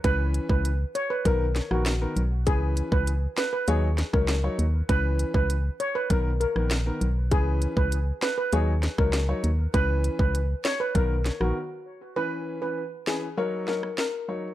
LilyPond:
<<
  \new Staff \with { instrumentName = "Steel pan" } { \time 4/4 \key cis \dorian \tempo 4 = 99 b'16 r8 b'16 r8 cis''16 b'16 ais'16 r8 fis'16 r4 | gis'8 r16 b'16 r8 b'16 b'16 gis'16 r8 ais'16 r4 | b'16 r8 b'16 r8 cis''16 b'16 ais'16 r16 ais'16 r4 r16 | gis'8 r16 b'16 r8 b'16 b'16 gis'16 r8 ais'16 r4 |
b'16 r8 b'16 r8 cis''16 b'16 ais'16 r8 fis'16 r4 | b'8 r16 b'16 r8 gis'16 r16 ais'16 r16 ais'16 r16 ais'8. r16 | }
  \new Staff \with { instrumentName = "Grand piano" } { \time 4/4 \key cis \dorian <e cis' b'>8. <e cis' b'>16 r4 <dis b ais'>16 r8 <dis b ais'>16 r16 <dis b ais'>16 r8 | <e cis' b'>8. <e cis' b'>16 r4 <fis dis' cis''>16 r8 <fis dis' cis''>16 r16 <fis dis' cis''>16 r8 | <e cis' b'>8. <e cis' b'>16 r4 <dis b ais'>16 r8 <dis b ais'>16 r16 <dis b ais'>16 r8 | <e cis' b'>8. <e cis' b'>16 r4 <fis dis' cis''>16 r8 <fis dis' cis''>16 r16 <fis dis' cis''>16 r8 |
<e cis' b'>8. <e cis' b'>16 r4 <dis b ais'>16 r8 <dis b ais'>16 r4 | <e cis' b'>8. <e cis' b'>16 r8 <e cis' b'>16 r16 <fis dis' cis''>8 <fis dis' cis''>16 r8. <fis dis' cis''>16 r16 | }
  \new Staff \with { instrumentName = "FM bass" } { \clef bass \time 4/4 \key cis \dorian cis,8. cis,8. r8 b,,8. ais,,8. b,,8 | cis,8. cis,8. r8 dis,8. cis,8. dis,8 | cis,8. cis,8. r8 b,,8. ais,,8. b,,8 | cis,8. cis,8. r8 dis,8. cis,8. dis,8 |
cis,8. cis,8. r8 b,,8. ais,,16 r4 | r1 | }
  \new DrumStaff \with { instrumentName = "Drums" } \drummode { \time 4/4 <hh bd>8 hh16 bd16 hh8 hh8 <hh bd>8 <hh sn>16 ss16 <hh sn>8 hh8 | <hh bd>8 hh16 bd16 hh8 <hh sn>8 hh8 <hh sn>16 <bd ss>16 <hh sn>8 hh8 | <hh bd>8 hh16 bd16 hh8 hh8 <hh bd>8 hh16 ss16 <hh sn>8 hh8 | <hh bd>8 hh16 bd16 hh8 <hh sn>8 hh8 <hh sn>16 <bd ss>16 <hh sn>8 hh8 |
<hh bd>8 hh16 bd16 hh8 <hh sn>8 <hh bd>8 <hh sn>16 ss16 r4 | r4 r8 sn8 r8 sn16 ss16 sn4 | }
>>